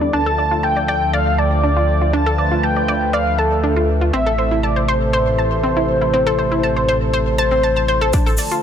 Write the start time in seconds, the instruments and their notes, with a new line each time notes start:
Already playing: detuned saw bass E2, analog synth pad D3, analog synth lead D5
0.01 synth arpeggio sound D4
0.13 detuned saw bass D2, analog synth pad F3 A3 F4 A4, synth arpeggio sound D4, analog synth lead A5
0.26 synth arpeggio sound A4
0.38 synth arpeggio sound D5
0.51 synth arpeggio sound F4
0.63 analog synth lead G5, synth arpeggio sound A5
0.76 synth arpeggio sound D5
0.88 synth arpeggio sound D5, analog synth lead G5
1.13 synth arpeggio sound D5, analog synth lead F5
1.38 analog synth lead D5, synth arpeggio sound A5
1.63 synth arpeggio sound D4
1.76 synth arpeggio sound F4
2.01 synth arpeggio sound F4
2.13 synth arpeggio sound D4, analog synth pad B4, analog synth lead A5
2.26 synth arpeggio sound A4
2.38 synth arpeggio sound D5
2.51 synth arpeggio sound F4
2.63 analog synth lead G5, synth arpeggio sound A5
2.76 synth arpeggio sound D5
2.88 synth arpeggio sound D5
3.13 synth arpeggio sound D5, analog synth lead F5
3.38 analog synth lead A4, synth arpeggio sound A5
3.63 synth arpeggio sound D4
3.76 synth arpeggio sound F4
4.01 synth arpeggio sound F4
4.13 detuned saw bass A1, analog synth pad C3 E3 E4 A4, synth arpeggio sound C4, analog synth lead E5
4.26 synth arpeggio sound A4
4.38 synth arpeggio sound C5
4.51 synth arpeggio sound E4
4.63 analog synth lead D5, synth arpeggio sound A5
4.76 synth arpeggio sound C5
4.88 analog synth lead C5, synth arpeggio sound C5
5.13 synth arpeggio sound C5
5.38 synth arpeggio sound A5
5.63 synth arpeggio sound C4
5.77 synth arpeggio sound E4
6.01 synth arpeggio sound E4
6.13 synth arpeggio sound C4
6.27 synth arpeggio sound A4
6.39 synth arpeggio sound C5
6.52 synth arpeggio sound E4
6.63 synth arpeggio sound A5
6.76 synth arpeggio sound C5
6.88 synth arpeggio sound C5
7.13 synth arpeggio sound C5
7.38 analog synth lead C5, synth arpeggio sound A5
7.51 synth arpeggio sound C4
7.63 synth arpeggio sound A5
7.76 synth arpeggio sound A5
7.88 synth arpeggio sound C5
8.01 synth arpeggio sound A4
8.13 analog synth pad D3 F3 A3 F4 A4, synth arpeggio sound D4, analog synth lead A5, kick, closed hi-hat, shaker
8.26 synth arpeggio sound A4, shaker
8.38 synth arpeggio sound D5, open hi-hat, shaker
8.51 synth arpeggio sound F4, closed hi-hat, shaker